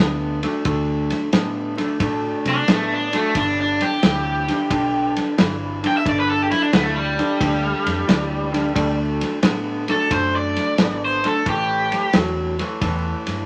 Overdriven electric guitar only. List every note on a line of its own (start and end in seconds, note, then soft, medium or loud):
2.49 2.69 D4 medium
2.72 2.92 A3 medium
2.93 3.14 D4 medium
3.15 3.36 A3 medium
3.35 3.57 D4 medium
3.60 3.81 D4 medium
3.82 5.12 G4 medium
5.87 5.97 G5 medium
5.97 6.05 E5 medium
6.09 6.19 D5 medium
6.20 6.28 B4 medium
6.29 6.42 A4 medium
6.42 6.46 G4 medium
6.51 6.62 E4 medium
6.62 6.71 D4 medium
6.73 6.83 B3 medium
6.83 6.93 A3 medium
6.95 8.94 G3 medium
9.91 10.12 A4 medium
10.12 10.33 C5 medium
10.36 11.00 D5 medium
11.05 11.25 C5 medium
11.26 11.47 A4 medium
11.49 12.13 G4 medium